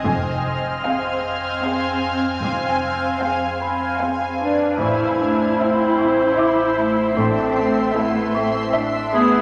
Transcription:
0.05 double bass section F1, synth drone F2, cello section F2, ambient pad C4 F5 G#5, grand piano G#5, violin section C6 F6
0.85 viola section C4, violin section G#4 F5
1.64 viola section C4, violin section G#4 F5
2.43 double bass section F1, cello section F2
3.21 viola section C4, violin section G#4 F5
3.62 grand piano B5
4.00 viola section C4, violin section G#4 F5
4.40 viola section D4, clarinet B4
4.79 synth drone A1, double bass section A1, cello section A2, marimba A2, viola section E4, violin section E4, clarinet C5, ambient pad E5 C6
5.20 marimba A3, violin section D4
5.59 marimba A3, violin section C4 E5
5.99 marimba A2
6.38 marimba A2, violin section E4 E5, grand piano D6
6.78 marimba A3
7.16 double bass section A1, cello section A2, marimba A2, viola section C4, violin section D4, clarinet A4
7.56 marimba A3, violin section C4
7.95 marimba A3, viola section A3, violin section B3 E5, clarinet E4
8.35 marimba A2, violin section C4
8.74 marimba A2, violin section D4 E5
9.14 marimba A3, viola section B3, violin section E4, clarinet G#4

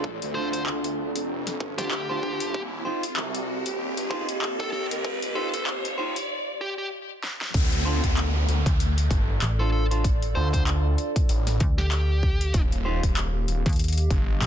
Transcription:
Already playing: detuned saw bass D2, ambient pad C4 A4 D5 F5, riser
0.04 kick
0.22 detuned saw bass D2, closed hi-hat
0.35 clean electric guitar D4 F4 A4 C5, lead electric guitar C5
0.53 lead electric guitar C5, closed hi-hat
0.66 clap
0.84 closed hi-hat
1.16 detuned saw bass F1, closed hi-hat
1.47 snare, closed hi-hat
1.60 detuned saw bass G1, kick
1.78 detuned saw bass D2, clean electric guitar D4 F4 A4 C5, lead electric guitar G4, kick, snare, closed hi-hat
1.91 clap
2.09 detuned saw bass D2, clean electric guitar D4 F4 A4 C5
2.23 kick
2.40 detuned saw bass G1, closed hi-hat
2.54 detuned saw bass D#1, ambient pad C4, kick
2.85 clean electric guitar D#4 F4 G4 C5, ambient pad G4
3.03 closed hi-hat
3.17 detuned saw bass C2, clap
3.35 closed hi-hat
3.41 ambient pad D#5
3.66 detuned saw bass D#1, closed hi-hat
3.97 detuned saw bass G1, closed hi-hat
4.10 detuned saw bass G1, clean electric guitar D#4 F4 G4 C5, kick
4.28 detuned saw bass D#1, closed hi-hat
4.42 clap
4.60 detuned saw bass D#2, lead electric guitar A4, kick
4.73 lead electric guitar A4
4.91 closed hi-hat
5.02 detuned saw bass D2, kick
5.22 detuned saw bass D#1, closed hi-hat
5.35 clean electric guitar D#4 F4 G4 C5, lead electric guitar A4
5.54 lead electric guitar A4, closed hi-hat
5.67 clap
5.85 closed hi-hat
5.98 clean electric guitar D#4 F4 G4 C5
6.16 closed hi-hat
6.61 lead electric guitar G4
6.78 lead electric guitar G4
7.23 snare
7.41 snare
7.54 detuned saw bass D2, kick, closed hi-hat, crash, downlifter
7.72 closed hi-hat
7.85 clean electric guitar D4 F4 A4 C5
8.04 detuned saw bass D2, kick, closed hi-hat
8.17 clap, closed hi-hat
8.35 ambient pad A4
8.48 detuned saw bass D2, closed hi-hat
8.66 fm bass D2, kick, closed hi-hat
8.80 closed hi-hat
8.86 ambient pad D5
8.98 closed hi-hat
9.11 detuned saw bass G1, kick, closed hi-hat
9.42 fm bass A1, clap, closed hi-hat
9.56 lead electric guitar A4, clean electric guitar C5, ambient pad F5
9.60 clean electric guitar D4 F4 A4
9.72 lead electric guitar A4
9.91 clean electric guitar D4 F4 A4 C5, closed hi-hat
10.04 kick, closed hi-hat
10.22 closed hi-hat
10.35 detuned saw bass D2, clean electric guitar D4 F4 A4 C5, lead electric guitar C5
10.53 lead electric guitar C5, kick, closed hi-hat
10.67 clap, closed hi-hat
10.98 closed hi-hat
11.16 kick, closed hi-hat
11.29 detuned saw bass A1, closed hi-hat
11.47 snare, closed hi-hat
11.60 fm bass D2, kick, closed hi-hat
11.78 lead electric guitar G4, snare
11.92 clap, closed hi-hat
12.23 kick
12.41 closed hi-hat
12.54 detuned saw bass D#1, kick, closed hi-hat
12.72 closed hi-hat
12.85 clean electric guitar D#4 F4 G4 C5
12.97 ambient pad G4
13.03 detuned saw bass D#1, kick, closed hi-hat
13.17 clap, closed hi-hat
13.48 detuned saw bass D#1, closed hi-hat
13.57 ambient pad D#5
13.66 fm bass D#2, kick, closed hi-hat
13.69 closed hi-hat
13.73 closed hi-hat
13.76 closed hi-hat
13.79 closed hi-hat
13.84 closed hi-hat
13.88 closed hi-hat
13.93 closed hi-hat
13.97 closed hi-hat
14.10 detuned saw bass G1, kick, closed hi-hat
14.42 fm bass A#1, clap, closed hi-hat

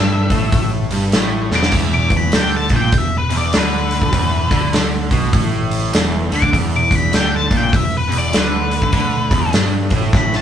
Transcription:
Already playing: picked electric bass G1, overdriven electric guitar G2, lead electric guitar E5
0.30 picked electric bass A1, overdriven electric guitar A2, kick, open hi-hat
0.52 kick, open hi-hat
0.91 picked electric bass G1, overdriven electric guitar G2, open hi-hat
1.12 picked electric bass A1, overdriven electric guitar A2, snare, open hi-hat
1.51 picked electric bass E1, overdriven electric guitar E2, snare
1.55 lead electric guitar D6
1.63 snare
1.72 picked electric bass E1, overdriven electric guitar E2, kick, open hi-hat, splash
1.94 lead electric guitar D6
2.10 kick, open hi-hat
2.17 lead electric guitar B5
2.32 picked electric bass D2, overdriven electric guitar D3, lead electric guitar G5, snare, open hi-hat
2.57 lead electric guitar A5
2.69 picked electric bass A#1, overdriven electric guitar A#2, kick, open hi-hat
2.76 lead electric guitar G5
2.92 picked electric bass E1, overdriven electric guitar E2, kick, open hi-hat
2.98 lead electric guitar E5
3.18 lead electric guitar B4
3.30 picked electric bass E1, overdriven electric guitar E2, open hi-hat
3.37 lead electric guitar D5
3.53 picked electric bass D2, overdriven electric guitar D3, snare, open hi-hat
3.58 lead electric guitar B4
3.91 open hi-hat
4.02 kick
4.13 picked electric bass E1, overdriven electric guitar E2, kick, open hi-hat
4.50 picked electric bass D2, overdriven electric guitar D3, kick, open hi-hat
4.73 snare, open hi-hat
5.11 picked electric bass B1, overdriven electric guitar B2, kick, open hi-hat
5.33 picked electric bass A1, overdriven electric guitar A2, kick, open hi-hat
5.71 open hi-hat
5.93 picked electric bass E1, overdriven electric guitar E2, snare, open hi-hat
6.31 picked electric bass D2, overdriven electric guitar D3, open hi-hat
6.36 lead electric guitar D6
6.42 kick
6.53 picked electric bass E1, overdriven electric guitar E2, kick, open hi-hat
6.76 lead electric guitar D6
6.91 kick, open hi-hat
6.95 lead electric guitar B5
7.13 picked electric bass D2, overdriven electric guitar D3, lead electric guitar G5, snare, open hi-hat
7.36 lead electric guitar A5
7.51 picked electric bass A#1, overdriven electric guitar A#2, kick, open hi-hat
7.57 lead electric guitar G5
7.72 picked electric bass E1, overdriven electric guitar E2, lead electric guitar E5, kick, open hi-hat
7.98 lead electric guitar B4
8.09 picked electric bass E1, overdriven electric guitar E2, open hi-hat
8.18 lead electric guitar D5
8.33 picked electric bass D2, overdriven electric guitar D3, snare, open hi-hat
8.37 lead electric guitar B4
8.71 open hi-hat
8.82 kick
8.93 picked electric bass D2, overdriven electric guitar D3, kick, open hi-hat
9.31 picked electric bass E1, overdriven electric guitar E2, kick, open hi-hat
9.53 picked electric bass G1, overdriven electric guitar G2, snare, open hi-hat
9.90 picked electric bass A1, overdriven electric guitar A2, kick, open hi-hat
10.13 kick, snare
10.17 lead electric guitar B5
10.33 lead electric guitar A5, snare

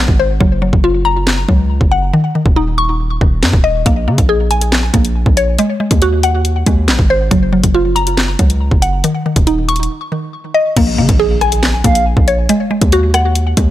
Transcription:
Already playing: synth pluck G#3 F#4 F#5
0.08 808-style bass G#1, kick
0.20 synth pluck C5
0.40 808-style bass F#1, synth pluck F#3, kick
0.62 synth pluck F#3
0.73 808-style bass F#1, kick
0.84 synth pluck F4
1.05 synth pluck A#5
1.27 snare, clap
1.49 808-style bass C#2, synth pluck F#3, kick
1.81 808-style bass F#1, kick
1.92 synth pluck F#5
2.14 synth pluck D#3
2.35 synth pluck D#3
2.46 808-style bass D#1, kick
2.56 synth pluck D#4
2.78 synth pluck C#6
3.21 808-style bass D#1, synth pluck D#3, kick
3.43 808-style bass F#2, snare, clap
3.53 808-style bass D#1, kick
3.64 synth pluck D#5
3.86 808-style bass A#1, synth pluck A#3, kick, closed hi-hat
4.07 808-style bass C#3, synth pluck A#3
4.18 808-style bass A#1, kick, closed hi-hat
4.29 synth pluck G#4
4.51 synth pluck G#5, closed hi-hat
4.61 closed hi-hat
4.72 snare, clap
4.94 808-style bass A#1, synth pluck A#3, kick, closed hi-hat
5.05 closed hi-hat
5.26 808-style bass A#1, kick
5.37 synth pluck C#5, closed hi-hat
5.59 synth pluck G#3, closed hi-hat
5.80 synth pluck G#3
5.91 808-style bass D#2, kick, closed hi-hat
6.02 synth pluck F#4, closed hi-hat
6.23 synth pluck F#5, closed hi-hat
6.45 closed hi-hat
6.66 808-style bass D#2, synth pluck G#3, kick, closed hi-hat
6.88 808-style bass A#1, snare, clap
6.99 808-style bass G#1, kick
7.10 synth pluck C5
7.31 808-style bass F#1, synth pluck F#3, kick, closed hi-hat
7.53 synth pluck F#3
7.64 808-style bass F#1, kick, closed hi-hat
7.75 synth pluck F4
7.96 synth pluck A#5, closed hi-hat
8.07 closed hi-hat
8.17 snare, clap
8.39 808-style bass C#2, synth pluck F#3, kick, closed hi-hat
8.50 closed hi-hat
8.71 808-style bass F#1, kick
8.82 synth pluck F#5, closed hi-hat
9.04 synth pluck D#3, closed hi-hat
9.26 synth pluck D#3
9.36 808-style bass D#1, kick, closed hi-hat
9.47 synth pluck D#4, closed hi-hat
9.69 synth pluck C#6, closed hi-hat
9.76 closed hi-hat
9.83 closed hi-hat
10.12 synth pluck D#3
10.54 synth pluck D#5
10.77 808-style bass A#1, synth pluck A#3, kick, closed hi-hat, crash, impact
10.98 808-style bass C#3, synth pluck A#3
11.09 808-style bass A#1, kick, closed hi-hat
11.20 synth pluck G#4
11.41 synth pluck G#5, cross-stick, closed hi-hat
11.52 closed hi-hat
11.63 snare, clap
11.84 808-style bass A#1, synth pluck A#3, soft synth lead F5, kick, closed hi-hat
11.95 closed hi-hat
12.17 808-style bass A#1, kick
12.28 synth pluck C#5, closed hi-hat
12.49 synth pluck G#3, closed hi-hat
12.71 synth pluck G#3
12.82 808-style bass D#2, kick, closed hi-hat
12.92 synth pluck F#4, closed hi-hat
13.14 synth pluck F#5, cross-stick, closed hi-hat
13.35 closed hi-hat
13.57 808-style bass D#2, synth pluck G#3, kick, closed hi-hat

